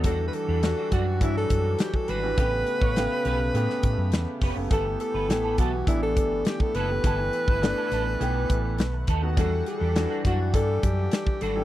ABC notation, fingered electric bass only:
X:1
M:4/4
L:1/16
Q:1/4=103
K:Em
V:1 name="Fingered electric bass" clef=bass
E,,2 z E,,2 z F,,2 G,,2 F,,2 z2 ^G,,,2 | A,,,2 z A,,,2 z B,,,2 A,, z A,, F,, E,, z =F,,, ^F,,, | G,,,2 z G,,, A,,,2 B,,,2 A,,,2 G,,,2 z2 F,,,2 | G,,,2 z G,,,2 z A,,,2 B,,,2 A,,,2 B,,,2 ^D,,2 |
E,,2 z E,,2 z F,,2 G,,2 F,,2 z2 ^G,,,2 |]